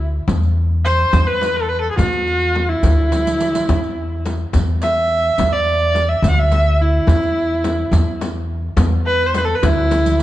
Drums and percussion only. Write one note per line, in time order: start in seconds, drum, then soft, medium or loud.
0.28 riq medium
0.28 frame drum medium
0.28 tombak dum medium
0.43 riq soft
0.56 tombak ka soft
0.71 tombak ka soft
0.85 riq soft
0.85 tombak tek medium
1.13 riq medium
1.13 frame drum medium
1.13 tombak dum medium
1.41 riq soft
1.41 tombak tek medium
1.41 frame drum medium
1.98 riq medium
1.98 tombak dum medium
1.98 frame drum medium
2.13 riq soft
2.13 tombak ka soft
2.27 riq soft
2.27 tombak ka soft
2.41 riq soft
2.55 tombak tek medium
2.55 frame drum medium
2.83 riq medium
2.83 tombak dum medium
2.83 frame drum medium
3.12 riq medium
3.12 tombak tek medium
3.12 frame drum medium
3.26 riq medium
3.26 tombak ka medium
3.41 riq medium
3.41 tombak tek medium
3.55 riq medium
3.55 tombak ka medium
3.69 riq medium
3.69 frame drum medium
3.69 tombak dum medium
3.84 riq soft
3.99 tombak ka soft
4.12 tombak ka soft
4.26 riq soft
4.26 tombak tek medium
4.26 frame drum medium
4.53 riq medium
4.53 frame drum medium
4.53 tombak dum medium
4.82 riq soft
4.82 tombak tek medium
4.82 frame drum medium
5.38 riq medium
5.38 tombak dum medium
5.38 frame drum medium
5.53 riq soft
5.68 tombak ka soft
5.82 tombak ka soft
5.95 riq soft
5.95 tombak tek medium
5.95 frame drum medium
6.24 riq medium
6.24 frame drum medium
6.24 tombak dum medium
6.52 riq soft
6.52 tombak tek medium
6.52 frame drum medium
7.08 riq medium
7.08 frame drum medium
7.08 tombak dum medium
7.23 riq soft
7.51 tombak ka soft
7.64 riq soft
7.64 tombak tek medium
7.64 frame drum medium
7.93 riq medium
7.93 frame drum medium
7.93 tombak dum medium
8.21 riq soft
8.21 tombak tek medium
8.21 frame drum medium
8.77 riq medium
8.77 frame drum medium
8.77 tombak dum medium
9.21 riq soft
9.34 riq medium
9.34 tombak tek medium
9.34 frame drum medium
9.63 riq medium
9.63 frame drum medium
9.63 tombak dum medium
9.91 riq medium
9.91 tombak tek medium
9.91 frame drum medium
10.06 riq medium
10.06 tombak ka medium
10.19 tombak tek medium